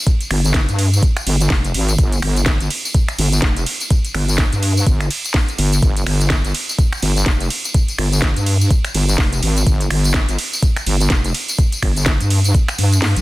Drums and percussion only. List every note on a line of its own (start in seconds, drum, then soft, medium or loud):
0.07 kick loud
0.07 closed hi-hat medium
0.07 tambourine medium
0.21 closed hi-hat medium
0.21 tambourine soft
0.31 finger snap medium
0.31 open hi-hat loud
0.31 ride medium
0.45 closed hi-hat soft
0.45 tambourine medium
0.54 kick loud
0.54 snare loud
0.54 closed hi-hat medium
0.69 closed hi-hat medium
0.69 tambourine soft
0.79 open hi-hat loud
0.79 ride medium
0.93 tambourine medium
1.03 kick loud
1.03 closed hi-hat medium
1.03 tambourine medium
1.17 finger snap medium
1.17 closed hi-hat medium
1.17 tambourine soft
1.27 open hi-hat loud
1.27 ride medium
1.41 closed hi-hat soft
1.41 tambourine medium
1.50 kick loud
1.50 snare loud
1.50 open hi-hat medium
1.50 tambourine medium
1.65 closed hi-hat medium
1.65 tambourine soft
1.74 open hi-hat loud
1.74 ride medium
1.88 closed hi-hat soft
1.88 tambourine medium
1.98 kick loud
1.98 closed hi-hat medium
1.98 tambourine medium
2.12 closed hi-hat medium
2.12 tambourine soft
2.22 finger snap medium
2.22 open hi-hat loud
2.22 ride medium
2.36 closed hi-hat soft
2.36 tambourine medium
2.46 kick loud
2.46 snare loud
2.46 closed hi-hat medium
2.46 tambourine medium
2.60 closed hi-hat medium
2.60 tambourine soft
2.70 open hi-hat loud
2.70 ride medium
2.85 tambourine medium
2.94 kick loud
2.94 closed hi-hat medium
2.94 tambourine medium
3.08 finger snap medium
3.08 closed hi-hat medium
3.08 tambourine soft
3.19 open hi-hat loud
3.19 ride medium
3.32 closed hi-hat soft
3.32 tambourine medium
3.42 kick loud
3.42 snare loud
3.42 closed hi-hat medium
3.56 closed hi-hat medium
3.56 tambourine soft
3.66 open hi-hat loud
3.66 ride medium
3.80 closed hi-hat soft
3.80 tambourine medium
3.90 kick loud
3.90 closed hi-hat medium
3.90 tambourine medium
4.05 closed hi-hat medium
4.05 tambourine soft
4.15 finger snap medium
4.15 open hi-hat loud
4.15 ride medium
4.28 closed hi-hat soft
4.28 tambourine medium
4.38 kick loud
4.38 snare loud
4.38 closed hi-hat medium
4.38 tambourine medium
4.53 closed hi-hat medium
4.53 tambourine soft
4.63 open hi-hat loud
4.63 ride medium
4.77 tambourine medium
4.87 kick loud
4.87 closed hi-hat medium
4.87 tambourine medium
5.00 finger snap medium
5.00 closed hi-hat medium
5.00 tambourine soft
5.11 open hi-hat loud
5.11 ride medium
5.25 closed hi-hat soft
5.25 tambourine medium
5.34 kick loud
5.34 snare loud
5.34 open hi-hat medium
5.34 tambourine medium
5.49 closed hi-hat soft
5.49 tambourine soft
5.58 open hi-hat loud
5.58 ride medium
5.72 closed hi-hat soft
5.72 tambourine medium
5.83 kick loud
5.83 closed hi-hat medium
5.83 tambourine medium
5.97 closed hi-hat medium
5.97 tambourine soft
6.07 finger snap medium
6.07 open hi-hat loud
6.07 ride medium
6.21 closed hi-hat soft
6.21 tambourine medium
6.30 kick loud
6.30 snare loud
6.30 closed hi-hat medium
6.45 closed hi-hat medium
6.45 tambourine soft
6.54 open hi-hat loud
6.54 ride medium
6.69 tambourine medium
6.78 kick loud
6.78 closed hi-hat medium
6.78 tambourine medium
6.93 finger snap medium
6.93 closed hi-hat medium
6.93 tambourine soft
7.02 open hi-hat loud
7.02 ride medium
7.16 closed hi-hat soft
7.16 tambourine medium
7.26 kick loud
7.26 snare loud
7.26 closed hi-hat medium
7.26 tambourine medium
7.40 closed hi-hat medium
7.40 tambourine soft
7.50 open hi-hat loud
7.50 ride medium
7.64 closed hi-hat soft
7.64 tambourine medium
7.74 kick loud
7.74 closed hi-hat medium
7.74 tambourine medium
7.88 closed hi-hat medium
7.88 tambourine soft
7.98 finger snap medium
7.98 open hi-hat loud
7.98 ride medium
8.12 closed hi-hat soft
8.12 tambourine medium
8.22 kick loud
8.22 snare loud
8.22 closed hi-hat medium
8.36 closed hi-hat medium
8.36 tambourine soft
8.46 open hi-hat loud
8.46 ride medium
8.61 tambourine medium
8.71 kick loud
8.71 closed hi-hat medium
8.71 tambourine medium
8.85 finger snap medium
8.85 closed hi-hat medium
8.85 tambourine soft
8.95 open hi-hat loud
8.95 ride medium
9.09 closed hi-hat soft
9.09 tambourine medium
9.18 kick loud
9.18 snare loud
9.18 open hi-hat medium
9.33 closed hi-hat medium
9.33 tambourine soft
9.43 open hi-hat loud
9.43 ride medium
9.57 closed hi-hat soft
9.57 tambourine medium
9.67 kick loud
9.67 closed hi-hat medium
9.67 tambourine medium
9.81 closed hi-hat medium
9.81 tambourine soft
9.90 finger snap medium
9.90 open hi-hat loud
9.90 ride medium
10.04 closed hi-hat soft
10.04 tambourine medium
10.14 kick loud
10.14 snare loud
10.14 closed hi-hat medium
10.14 tambourine medium
10.29 closed hi-hat medium
10.29 tambourine soft
10.39 open hi-hat loud
10.39 ride medium
10.53 tambourine medium
10.62 kick loud
10.62 closed hi-hat medium
10.62 tambourine medium
10.76 finger snap medium
10.76 closed hi-hat medium
10.76 tambourine soft
10.86 open hi-hat loud
10.86 ride medium
11.00 closed hi-hat soft
11.00 tambourine medium
11.10 kick loud
11.10 snare loud
11.10 closed hi-hat medium
11.10 tambourine medium
11.24 closed hi-hat medium
11.24 tambourine soft
11.34 open hi-hat loud
11.34 ride medium
11.48 closed hi-hat soft
11.48 tambourine medium
11.58 kick loud
11.58 closed hi-hat medium
11.58 tambourine medium
11.72 closed hi-hat medium
11.72 tambourine soft
11.82 finger snap medium
11.82 kick medium
11.82 open hi-hat loud
11.82 ride medium
11.96 closed hi-hat soft
11.96 tambourine medium
12.06 kick loud
12.06 snare loud
12.06 closed hi-hat medium
12.20 closed hi-hat medium
12.20 tambourine soft
12.30 open hi-hat loud
12.30 ride medium
12.44 closed hi-hat soft
12.44 tambourine medium
12.54 kick loud
12.54 closed hi-hat medium
12.54 tambourine medium
12.68 finger snap medium
12.68 closed hi-hat medium
12.68 tambourine soft
12.78 open hi-hat loud
12.78 ride medium
12.92 closed hi-hat soft
12.92 tambourine medium
13.02 snare loud
13.02 open hi-hat medium
13.02 tambourine medium
13.16 closed hi-hat medium
13.16 tambourine soft